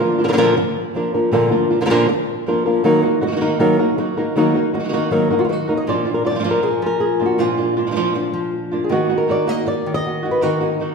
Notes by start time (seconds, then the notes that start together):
0.00 F3 A#3 D4 F4 A#4
0.18 A#3 D4 F4
0.24 D3 F3 A#3 D4 A#4
0.28 D3 F3 A#3 D4 F4 A#4
0.33 D3 F3 A#3 D4 F4 A#4
0.37 A#2 D3 F3 A#3 D4 F4 A#4
0.57 muted nylon-string guitar stroke
0.94 F3 A#3 D4 F4 A#4
1.14 F3 A#3 D4 A#4
1.32 A#2 D3 F3 A#3 D4 F4 A#4
1.51 F3 A#3 D4 F4 A#4
1.70 A#3 D4 F4
1.80 D3 F3 A#3 D4 F4 A#4
1.85 D3 F3 A#3 D4 F4 A#4
1.89 A#2 D3 F3 A#3 D4 F4 A#4
2.09 muted nylon-string guitar stroke
2.47 F3 A#3 D4 F4 A#4
2.66 F3 A#3 D4 A#4
2.84 D#3 F#3 A#3 D#4 F#4 A#4
3.03 A#3 D#4 F#4 A#4
3.21 A#3 D#4 F#4, muted nylon-string guitar stroke
3.27 D#3 A#3 D#4 F#4
3.32 D#3 A#3 D#4 F#4
3.36 D#3 A#3 D#4 F#4
3.41 D#3 A#3 D#4 F#4 A#4
3.59 D#3 F#3 A#3 D#4 A#4, muted nylon-string guitar stroke
3.79 A#3 D#4 F#4 A#4
3.98 D#3 A#3 D#4 F#4, muted nylon-string guitar stroke
4.17 A#3 D#4 F#4 A#4
4.36 D#3 F#3 A#3 D#4 F#4 A#4
4.54 A#3 D#4 F#4 A#4
4.74 A#3 D#4 F#4, muted nylon-string guitar stroke
4.79 D#3 A#3 D#4 F#4
4.84 D#3 A#3 D#4 F#4
4.89 D#3 A#3 D#4 F#4
4.93 D#3 A#3 D#4 F#4 A#4
5.11 D#3 F#3 A#3 D#4 A#4, muted nylon-string guitar stroke
5.30 A#3 D#4 F#4 A#4
5.39 F4 F#4
5.45 F4
5.49 D#3 A#3 D#4 F#4, muted nylon-string guitar stroke
5.68 A#3 D#4 F#4 A#4
5.77 D#5
5.87 A#2 F3 A#3 D4 F4 D5
6.05 A#3 D4 F4
6.14 A#4
6.25 A#3 D4 F4 D5
6.30 F3 A#3 D4 F4
6.35 F3 A#3 D4 F4
6.39 F3 A#3 D4 F4
6.44 A#2 F3 A#3 D4 F4
6.51 A#4
6.63 G#4, muted nylon-string guitar stroke
6.82 F3
6.86 A#4
7.00 G#4
7.20 A#3 D4 F4
7.26 F#4
7.38 A#2 F3 A#3 D4 F4
7.58 A#3 D4 F4
7.77 A#3 D4 F4
7.87 F3 A#3 D4 F4
7.91 F3 A#3 D4 F4
7.96 A#2 F3 A#3 D4 F4
8.14 D4, muted nylon-string guitar stroke
8.34 F3
8.71 A#3 D4 F4
8.84 G#4
8.89 D#3 A#3 D#4 F#4
9.09 A#3 D#4 F#4
9.18 A#4
9.28 D#3 A#3 D#4 F#4 D5
9.47 A#3 D#4 F#4 D#5
9.66 D5, muted nylon-string guitar stroke
9.86 D#3
9.94 D#5
10.06 F#4
10.23 A#3 D#4 F#4
10.31 B4
10.41 D#3 A#3 D#4 F#4 A#4
10.61 A#3 D#4 F#4
10.80 D#3 A#3 D#4 F#4